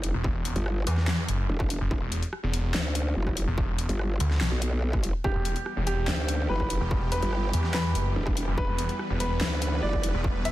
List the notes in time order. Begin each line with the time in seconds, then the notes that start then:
Already playing: F#1
0.04 closed hi-hat
0.14 E1
0.24 kick
0.45 closed hi-hat
0.56 G1, closed hi-hat
0.66 cross-stick
0.87 E2, closed hi-hat
0.97 snare
1.08 snare, clap
1.28 F#1, closed hi-hat
1.49 E1
1.60 kick, cross-stick
1.70 closed hi-hat
1.81 F#1
1.91 E1, kick
2.02 E1
2.12 closed hi-hat
2.23 closed hi-hat
2.33 cross-stick
2.43 E1
2.54 closed hi-hat
2.74 D2, snare, clap
2.95 closed hi-hat
3.16 F#1
3.27 kick, cross-stick
3.37 closed hi-hat
3.47 E1
3.58 kick
3.79 closed hi-hat
3.89 G1, closed hi-hat
3.99 cross-stick
4.20 D2, closed hi-hat
4.31 snare
4.41 B1, snare, clap
4.52 B1
4.62 closed hi-hat
4.93 kick, cross-stick
5.03 closed hi-hat
5.24 E1 E3 G3 B3 G4, kick
5.35 E1
5.45 closed hi-hat
5.56 closed hi-hat
5.66 cross-stick
5.77 E1
5.87 G4, closed hi-hat
6.08 D2, snare, clap
6.29 closed hi-hat
6.49 F#1 B4
6.60 kick, cross-stick
6.70 closed hi-hat
6.81 E1
6.91 kick
7.12 B4, closed hi-hat
7.22 G1, closed hi-hat
7.33 cross-stick
7.53 E2, closed hi-hat
7.64 snare
7.74 B4, snare, clap
7.95 F#1, closed hi-hat
8.16 E1
8.27 kick, cross-stick
8.37 closed hi-hat
8.47 F#1
8.58 E1 B4, kick
8.68 E1
8.78 closed hi-hat
8.89 closed hi-hat
8.99 cross-stick
9.10 E1
9.20 B4, closed hi-hat
9.41 D2, snare, clap
9.62 closed hi-hat
9.83 F#1 D5
9.93 kick, cross-stick
10.03 closed hi-hat
10.14 E1
10.24 kick
10.45 E5, closed hi-hat